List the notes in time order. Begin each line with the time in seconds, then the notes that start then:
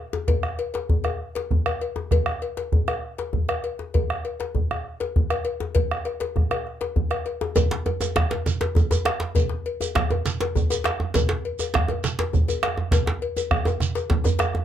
0.13 djembe slap, djembe tone
0.28 bombo rim, bombo low, cowbell, djembe bass
0.43 bombo rim, djembe slap
0.59 cowbell
0.74 cowbell, djembe slap
0.89 bombo low, djembe bass
1.04 bombo rim, cowbell, djembe tone
1.35 cowbell, djembe slap
1.51 bombo low, djembe slap, djembe bass
1.66 bombo rim, cowbell
1.81 cowbell
1.96 djembe slap, djembe tone
2.11 bombo rim, bombo low, cowbell, djembe bass
2.26 bombo rim, djembe slap
2.42 cowbell
2.57 cowbell, djembe slap
2.72 bombo low, djembe bass
2.88 bombo rim, cowbell, djembe tone
3.18 cowbell, djembe slap
3.33 bombo low, djembe slap, djembe bass
3.49 bombo rim, cowbell
3.64 cowbell
3.79 djembe slap
3.94 bombo rim, bombo low, cowbell, djembe bass
4.10 bombo rim, djembe slap
4.25 cowbell
4.40 cowbell, djembe slap
4.55 bombo low, djembe bass
4.71 bombo rim, djembe tone
5.00 cowbell, djembe slap
5.16 bombo low, djembe slap, djembe bass
5.30 bombo rim, cowbell
5.45 cowbell
5.60 djembe slap, djembe tone
5.75 bombo low, cowbell, djembe slap, djembe bass
5.91 bombo rim, djembe slap
6.05 bombo rim, cowbell, djembe slap
6.20 cowbell, djembe slap
6.36 bombo rim, bombo low, djembe slap, djembe bass
6.51 bombo rim, cowbell, djembe tone
6.67 bombo rim
6.81 cowbell, djembe slap
6.96 bombo low, djembe slap, djembe bass
7.11 bombo rim, cowbell
7.26 cowbell, djembe slap
7.41 bombo rim, djembe slap, djembe tone
7.56 bombo rim, bombo low, cowbell, djembe tone, djembe bass, shekere
7.71 djembe slap
7.86 cowbell, djembe tone
8.01 bombo rim, cowbell, djembe tone, shekere
8.16 bombo rim, bombo low, djembe slap, djembe bass
8.31 cowbell, djembe slap
8.46 djembe tone, shekere
8.61 cowbell, djembe slap
8.75 bombo low, djembe tone, djembe bass, shekere
8.91 cowbell, djembe tone, shekere
9.05 bombo rim, cowbell, djembe slap
9.20 djembe slap
9.35 bombo rim, bombo low, cowbell, djembe bass, shekere
9.49 djembe slap
9.66 cowbell
9.81 bombo rim, cowbell, djembe tone, shekere
9.95 bombo rim, bombo low, djembe slap, djembe bass
10.11 cowbell, djembe tone
10.26 djembe slap, shekere
10.41 cowbell, djembe slap
10.55 bombo low, djembe bass, shekere
10.70 cowbell, djembe tone, shekere
10.84 bombo rim, cowbell, djembe slap
11.00 djembe tone
11.14 bombo rim, bombo low, cowbell, djembe slap, djembe bass, shekere
11.29 djembe slap
11.45 cowbell
11.59 bombo rim, cowbell, djembe tone, shekere
11.74 bombo rim, bombo low, djembe slap, djembe bass
11.88 cowbell, djembe tone
12.04 djembe slap, shekere
12.19 cowbell, djembe slap
12.33 bombo low, djembe bass, shekere
12.48 cowbell, djembe tone, shekere
12.63 bombo rim, cowbell, djembe slap
12.78 djembe tone
12.91 bombo rim, bombo low, cowbell, djembe slap, djembe bass, shekere
13.06 bombo rim, djembe slap
13.22 cowbell
13.37 cowbell, djembe slap, djembe tone, shekere
13.51 bombo rim, bombo low, djembe bass
13.65 bombo rim, cowbell, djembe tone, shekere
13.80 bombo rim, djembe tone, shekere
13.95 cowbell, djembe slap, shekere
14.10 bombo low, djembe slap, djembe bass
14.24 cowbell, djembe tone, djembe bass, shekere
14.39 bombo rim, cowbell, djembe slap, djembe tone, shekere
14.54 bombo rim, djembe slap, djembe tone